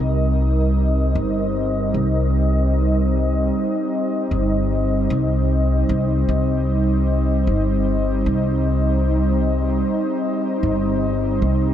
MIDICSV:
0, 0, Header, 1, 3, 480
1, 0, Start_track
1, 0, Key_signature, -3, "minor"
1, 0, Tempo, 789474
1, 1902, Time_signature, 4, 2, 24, 8
1, 7137, End_track
2, 0, Start_track
2, 0, Title_t, "Analog synth pad"
2, 0, Program_c, 0, 89
2, 0, Note_on_c, 0, 55, 75
2, 0, Note_on_c, 0, 60, 63
2, 0, Note_on_c, 0, 63, 71
2, 0, Note_on_c, 0, 70, 85
2, 0, Note_on_c, 0, 75, 73
2, 494, Note_on_c, 0, 72, 77
2, 1847, Note_off_c, 0, 70, 0
2, 7137, Note_off_c, 0, 55, 0
2, 7137, Note_off_c, 0, 60, 0
2, 7137, Note_off_c, 0, 63, 0
2, 7137, Note_off_c, 0, 72, 0
2, 7137, Note_off_c, 0, 75, 0
2, 7137, End_track
3, 0, Start_track
3, 0, Title_t, "Upright bass"
3, 0, Program_c, 1, 32
3, 0, Note_on_c, 1, 36, 89
3, 681, Note_off_c, 1, 36, 0
3, 701, Note_on_c, 1, 31, 83
3, 1161, Note_off_c, 1, 31, 0
3, 1182, Note_on_c, 1, 36, 81
3, 2121, Note_off_c, 1, 36, 0
3, 2622, Note_on_c, 1, 31, 80
3, 3081, Note_off_c, 1, 31, 0
3, 3102, Note_on_c, 1, 36, 88
3, 3561, Note_off_c, 1, 36, 0
3, 3582, Note_on_c, 1, 36, 91
3, 3796, Note_off_c, 1, 36, 0
3, 3822, Note_on_c, 1, 36, 90
3, 4521, Note_off_c, 1, 36, 0
3, 4543, Note_on_c, 1, 31, 85
3, 5002, Note_off_c, 1, 31, 0
3, 5023, Note_on_c, 1, 36, 83
3, 5962, Note_off_c, 1, 36, 0
3, 6463, Note_on_c, 1, 31, 85
3, 6921, Note_off_c, 1, 31, 0
3, 6943, Note_on_c, 1, 36, 88
3, 7137, Note_off_c, 1, 36, 0
3, 7137, End_track
0, 0, End_of_file